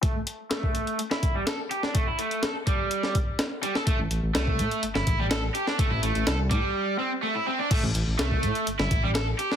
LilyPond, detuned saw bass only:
\new Staff \with { instrumentName = "Detuned saw bass" } { \clef bass \time 4/4 \key a \minor \tempo 4 = 125 r1 | r1 | a,,16 a,,16 a,,16 a,,16 c,8 a,16 r16 g,,16 g,,16 a,,16 a,,8. r8 | a,,16 a,,16 a,,16 a,,16 c,8 a,16 r2 r16 |
a,,16 a,,16 a,,16 a,,16 c,8 a,16 r16 g,,16 g,,16 a,,16 a,,8. r8 | }